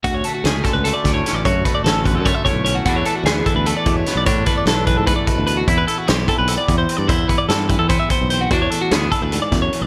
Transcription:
<<
  \new Staff \with { instrumentName = "Clean electric guitar" } { \time 7/8 \key d \lydian \tempo 4 = 149 fis'16 cis''16 a'16 fis'16 gis'8 a'16 b'16 a'16 d''8 cis''8 d''16 | cis''8 b'16 d''16 a'8 b'16 a'16 cis''16 e''16 cis''8 cis''16 fis'16 | fis'16 cis''16 a'16 fis'16 gis'8 a'16 b'16 a'16 d''8 cis''8 d''16 | cis''8 b'16 d''16 a'8 b'16 a'16 b'16 d''16 b'8 b'16 fis'16 |
e'16 b'16 a'16 fis'16 g'8 a'16 b'16 a'16 d''8 c''8 d''16 | c''8 b'16 d''16 a'8 b'16 a'16 c''16 e''16 c''8 c''16 fis'16 | fis'16 cis''16 a'16 fis'16 gis'8 a'16 b'16 a'16 d''8 cis''8 d''16 | }
  \new Staff \with { instrumentName = "Clean electric guitar" } { \time 7/8 \key d \lydian << { fis'8 a8 cis'4 a4 cis'8 | fis'8 a8 cis'4 a4 cis'8 | <e a b d'>8 a8 b4 a4 b8 | d'8 a8 b4 a4 b8 |
e'8 b8 c'4 b4 c'8 | e'8 b8 c'4 b4 c'8 | d'8 a8 b2~ b8 | } \\ { d,4. d4 a,4 | d,4. d4 a,4 | e,4. e4 b,4 | e,4. e4 b,4 |
e,4. e4 e,4 | e,4. e4 e,4 | e,4. e8 gis,8 fis,8 e,8 | } >> }
  \new Staff \with { instrumentName = "Fingered electric bass" } { \clef bass \time 7/8 \key d \lydian d,8 r8 cis,8 r16 cis,8 r16 d,8 r16 a,,16 | fis,8 r8 a,,8. fis,8 r8 b,,8. | e,8 r8 d,8 r16 d,8 r16 e,8 r16 b,,16 | a,8 r8 b,,8. gis,8 r8 d,8. |
e,8 r8 b,,8 r16 b,,8 r16 e,8 r16 g,16 | e,8 r8 g,8. e,8 r8 b,,8. | e,8 r8 d,8 r16 d,8 r16 e,8 r16 b,,16 | }
  \new DrumStaff \with { instrumentName = "Drums" } \drummode { \time 7/8 <hh bd>8 hh8 <hh sn>8 <hh bd sn>8 hh8 <hh bd sn>8 <hh sn>8 | <hh bd>8 <hh bd>8 <hh sn>8 <hh bd>8 <hh bd>8 <hh bd>8 hh8 | <hh bd>8 hh8 <hh sn>8 <hh bd>8 hh8 <hh bd>8 <hh sn>8 | <hh bd>8 <hh bd>8 <hh sn>8 <hh bd>8 <hh bd>8 <hh bd>8 hh8 |
<hh bd>8 hh8 <hh sn>8 <hh bd>8 hh8 <hh bd>8 hh8 | <hh bd>8 <hh bd>8 <hh sn>8 <hh bd>8 <hh bd>8 <hh bd>8 hh8 | <hh bd>8 hh8 <hh sn>8 <hh bd>8 hh8 <hh bd sn>8 hh8 | }
>>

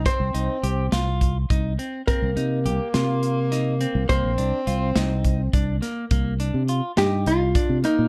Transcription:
<<
  \new Staff \with { instrumentName = "Hollow-body jazz guitar" } { \time 7/8 \key c \minor \tempo 4 = 104 c''2 r4. | bes'2.~ bes'8 | c''2. r8 | r4. g'8 f'4 ees'8 | }
  \new Staff \with { instrumentName = "Clean electric guitar" } { \time 7/8 \key c \minor c'8 ees'8 g'8 f'4 ees'8 c'8 | c'8 ees'8 g'8 f'4 ees'8 c'8 | bes8 d'8 f'8 ees'4 d'8 bes8 | bes8 d'8 f'8 ees'4 d'8 bes8 | }
  \new Staff \with { instrumentName = "Alto saxophone" } { \time 7/8 \key c \minor c'2 r4. | bes2.~ bes8 | c'2. r8 | r2. r8 | }
  \new Staff \with { instrumentName = "Fingered electric bass" } { \clef bass \time 7/8 \key c \minor r16 c,16 c,16 r16 c,8 c,4 c,8 r8 | r16 c,16 c8 c,16 r16 c4.~ c16 c,16 | c,16 bes,,16 c,16 r16 c,8 c,4 c,8 r8 | c,8. c8 r16 g,8 c,8 r16 c16 r16 bes,16 | }
  \new DrumStaff \with { instrumentName = "Drums" } \drummode { \time 7/8 <hh bd>8 hh8 hh8 <hh sn>8 <hh bd>8 <hh bd>8 hh8 | <hh bd>8 hh8 hh8 <hh sn>8 hh8 <hh sn>8 hh8 | <hh bd>8 hh8 hh8 <hh sn>8 <hh bd>8 <hh bd>8 <hh sn>8 | <hh bd>8 hh8 hh8 <hh sn>8 hh8 <hh bd>8 hh8 | }
>>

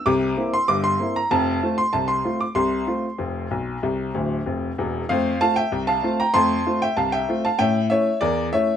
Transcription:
<<
  \new Staff \with { instrumentName = "Upright piano" } { \time 2/4 \key f \major \tempo 4 = 96 d'''8. c'''16 d'''16 c'''8 bes''16 | a''8. c'''16 a''16 c'''8 d'''16 | c'''2~ | c'''4. r8 |
<c'' f''>8 <f'' a''>16 <e'' g''>8 <f'' a''>8 <g'' bes''>16 | <a'' c'''>8. <e'' g''>16 <f'' a''>16 <e'' g''>8 <f'' a''>16 | <e'' g''>8 <cis'' e''>8 <bes' d''>8 <cis'' e''>8 | }
  \new Staff \with { instrumentName = "Upright piano" } { \time 2/4 \key f \major <c, c>8 <bes c' e'>8 <g,, g,>8 <bes c' e'>8 | <f,, f,>8 <a c' f'>8 <c, c>8 <a c' f'>8 | <c, c>8 <a c' f'>8 <f,, f,>8 b,,8 | <c, c>8 <d,, d,>8 <f,, f,>8 <e,, e,>8 |
<f, a>8 <a c' f'>8 c,8 <a c' f'>8 | <f, a>8 <a c' f'>8 c,8 <a c' f'>8 | <a, cis'>8 <a cis' e'>8 e,8 <a cis' e'>8 | }
>>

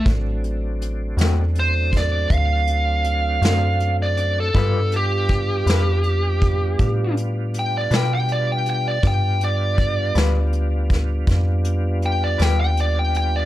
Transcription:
<<
  \new Staff \with { instrumentName = "Lead electric guitar" } { \time 12/8 \key g \major \tempo 4. = 53 r2 c''8 d''8 f''2~ f''16 d''8 a'16~ | a'8 g'2. r8 g''16 d''16 g''16 g''16 d''16 g''16 g''16 d''16 | g''8 d''4 r2 r8 g''16 d''16 g''16 g''16 d''16 g''16 g''16 d''16 | }
  \new Staff \with { instrumentName = "Clean electric guitar" } { \time 12/8 \key g \major r4. <d a c' fis'>8 r2 r8 <d a c' fis'>8 r4 | <g d' f' b'>8 r4 <g d' f' b'>8 r2 r8 <g d' f' b'>8 r4 | r4. <g d' f' b'>8 r2 r8 <g d' f' b'>8 r4 | }
  \new Staff \with { instrumentName = "Tonewheel organ" } { \time 12/8 \key g \major <fis a c' d'>1. | <g b d' f'>1. | <g b d' f'>1. | }
  \new Staff \with { instrumentName = "FM bass" } { \clef bass \time 12/8 \key g \major a,,4. e,4. d,4. fis,4. | g,4. f,4. a,4. b,4. | g,4. d,4. f,4. ees,4. | }
  \new DrumStaff \with { instrumentName = "Drums" } \drummode { \time 12/8 <hh bd>8 hh8 hh8 <hh sn>8 hh8 <hh bd sn>8 <hh bd>8 hh8 hh8 <hh sn>8 hh8 hh8 | <hh bd>8 hh8 <hh bd>8 <hh sn>8 hh8 <hh bd>8 <hh bd>8 hh8 hh8 <hh sn>8 hh8 hh8 | <hh bd>8 hh8 <hh bd>8 <hh sn>8 hh8 <hh bd sn>8 <hh bd sn>8 hh8 hh8 <hh sn>8 hh8 hh8 | }
>>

